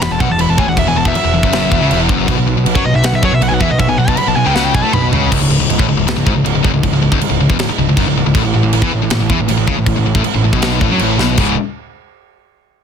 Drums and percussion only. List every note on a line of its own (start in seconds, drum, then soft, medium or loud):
0.02 snare loud
0.02 china medium
0.20 kick loud
0.39 china medium
0.58 kick loud
0.77 kick loud
0.77 china medium
1.05 kick loud
1.15 china medium
1.43 kick loud
1.53 snare loud
1.53 china medium
1.72 kick loud
1.91 china medium
2.09 kick loud
2.28 kick loud
2.28 china medium
2.66 china medium
2.75 kick loud
3.04 snare loud
3.04 china medium
3.23 kick loud
3.42 china medium
3.61 kick loud
3.79 kick medium
3.79 china medium
4.08 kick loud
4.17 china medium
4.56 snare medium
4.75 kick loud
4.93 mid tom loud
5.13 floor tom medium
5.32 kick loud
5.32 crash loud
5.32 china medium
5.70 china medium
5.79 kick loud
6.08 snare loud
6.08 china medium
6.27 kick loud
6.46 china medium
6.65 kick loud
6.83 kick loud
6.83 china medium
7.12 kick loud
7.21 china medium
7.50 kick loud
7.59 snare loud
7.59 china medium
7.97 kick loud
7.97 china medium
8.35 kick loud
8.35 china medium
8.73 china medium
8.82 kick loud
9.10 snare loud
9.10 china medium
9.30 kick loud
9.48 china medium
9.68 kick loud
9.86 kick loud
9.86 china medium
10.15 kick loud
10.24 china medium
10.53 kick loud
10.62 snare loud
10.62 china medium
10.81 kick loud
10.99 china medium
11.19 snare medium
11.37 kick loud
11.37 crash loud